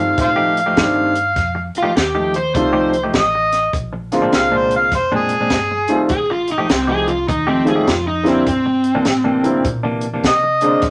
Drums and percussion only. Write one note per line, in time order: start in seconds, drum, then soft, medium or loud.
0.18 kick loud
0.18 closed hi-hat medium
0.57 closed hi-hat medium
0.77 kick medium
0.77 snare loud
0.77 closed hi-hat medium
1.15 closed hi-hat medium
1.36 kick medium
1.36 snare soft
1.36 closed hi-hat medium
1.75 closed hi-hat medium
1.97 snare loud
1.97 closed hi-hat medium
2.34 closed hi-hat medium
2.55 kick loud
2.55 closed hi-hat medium
2.93 closed hi-hat medium
3.14 kick medium
3.14 snare medium
3.14 closed hi-hat medium
3.52 snare soft
3.52 closed hi-hat medium
3.73 kick loud
3.73 closed hi-hat medium
4.12 snare soft
4.12 closed hi-hat medium
4.32 snare loud
4.32 closed hi-hat medium
4.71 closed hi-hat medium
4.92 kick loud
4.92 snare soft
4.92 closed hi-hat medium
5.29 closed hi-hat medium
5.50 kick medium
5.50 snare medium
5.50 closed hi-hat medium
5.88 closed hi-hat medium
6.09 kick loud
6.09 closed hi-hat medium
6.48 closed hi-hat medium
6.69 snare loud
6.69 closed hi-hat medium
7.08 closed hi-hat medium
7.29 kick loud
7.29 closed hi-hat medium
7.67 closed hi-hat medium
7.87 kick medium
7.87 snare loud
7.87 closed hi-hat medium
8.26 snare soft
8.26 closed hi-hat medium
8.47 kick loud
8.47 closed hi-hat medium
8.84 closed hi-hat medium
9.05 snare loud
9.05 closed hi-hat medium
9.44 closed hi-hat medium
9.65 kick loud
9.65 closed hi-hat medium
10.01 closed hi-hat medium
10.24 kick medium
10.24 snare loud
10.24 closed hi-hat medium
10.61 closed hi-hat medium
10.82 kick loud
10.82 snare soft
10.82 closed hi-hat medium